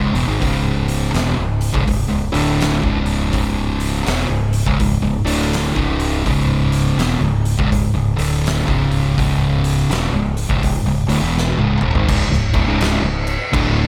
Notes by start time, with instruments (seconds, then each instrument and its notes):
Already playing: fingered electric bass C#1, distorted electric guitar C#2 G#2
0.14 fingered electric bass E1, distorted electric guitar E2 B2, open hi-hat
0.27 fingered electric bass G#1, distorted electric guitar G#2 D#3
0.40 fingered electric bass C#1, distorted electric guitar C#2 G#2 C#3, kick, open hi-hat
0.88 open hi-hat
1.14 fingered electric bass E1, distorted electric guitar E2 B2, snare, open hi-hat
1.37 fingered electric bass C#1, distorted electric guitar C#2 G#2
1.61 open hi-hat
1.73 fingered electric bass C#1, distorted electric guitar C#2 G#2, kick
1.86 fingered electric bass C#1, distorted electric guitar C#2 G#2, kick, open hi-hat
2.09 fingered electric bass C#1, distorted electric guitar C#2 G#2
2.32 fingered electric bass D1, distorted electric guitar D2 A2 D3, open hi-hat
2.61 snare, open hi-hat
2.82 fingered electric bass C#1, distorted electric guitar C#2 G#2 C#3, kick
3.06 open hi-hat
3.32 fingered electric bass C#1, distorted electric guitar C#2 G#2 C#3, kick, open hi-hat
3.80 open hi-hat
4.06 fingered electric bass E1, distorted electric guitar E2 B2, snare, open hi-hat
4.29 fingered electric bass C#1, distorted electric guitar C#2 G#2
4.53 open hi-hat
4.66 fingered electric bass C#1, distorted electric guitar C#2 G#2, kick
4.79 fingered electric bass C#1, distorted electric guitar C#2 G#2, kick, open hi-hat
5.02 fingered electric bass C#1, distorted electric guitar C#2 G#2
5.24 fingered electric bass D1, distorted electric guitar D2 A2 D3, open hi-hat
5.53 snare, open hi-hat
5.74 fingered electric bass C#1, distorted electric guitar C#2 G#2 C#3, kick
6.00 open hi-hat
6.25 fingered electric bass C#1, distorted electric guitar C#2 G#2 C#3, kick, open hi-hat
6.72 open hi-hat
6.96 fingered electric bass E1, distorted electric guitar E2 B2, open hi-hat
7.01 snare
7.21 fingered electric bass C#1, distorted electric guitar C#2 G#2
7.45 open hi-hat
7.57 fingered electric bass C#1, distorted electric guitar C#2 G#2, kick
7.71 fingered electric bass C#1, distorted electric guitar C#2 G#2, kick, open hi-hat
7.94 fingered electric bass C#1, distorted electric guitar C#2 G#2
8.16 fingered electric bass D1, distorted electric guitar D2 A2 D3, open hi-hat
8.46 snare, open hi-hat
8.66 fingered electric bass C#1, distorted electric guitar C#2 G#2 C#3, kick
8.91 open hi-hat
9.17 fingered electric bass C#1, distorted electric guitar C#2 G#2 C#3, kick, open hi-hat
9.64 open hi-hat
9.90 fingered electric bass E1, distorted electric guitar E2 B2, snare, open hi-hat
10.13 fingered electric bass C#1, distorted electric guitar C#2 G#2
10.37 open hi-hat
10.49 fingered electric bass C#1, distorted electric guitar C#2 G#2, kick
10.63 fingered electric bass C#1, distorted electric guitar C#2 G#2, kick, open hi-hat
10.85 fingered electric bass C#1, distorted electric guitar C#2 G#2
11.07 fingered electric bass D1, distorted electric guitar D2 A2, open hi-hat
11.21 fingered electric bass E1, distorted electric guitar E2 B2 E3
11.38 snare
11.57 fingered electric bass C#1, distorted electric guitar C#2 G#2, high tom
11.81 fingered electric bass E1, distorted electric guitar E2 B2, mid tom
11.94 fingered electric bass G#1, distorted electric guitar G#2 D#3, floor tom
12.08 fingered electric bass C#1, distorted electric guitar C#2 G#2, kick, crash
12.30 fingered electric bass C#1, distorted electric guitar C#2 G#2, snare
12.54 fingered electric bass D1, distorted electric guitar D2 A2, kick, crash
12.66 fingered electric bass C#1, distorted electric guitar C#2 G#2 C#3
12.81 snare, crash
13.02 fingered electric bass C#1, distorted electric guitar C#2 G#2
13.27 crash
13.52 fingered electric bass D1, distorted electric guitar D2 A2 D3, kick, crash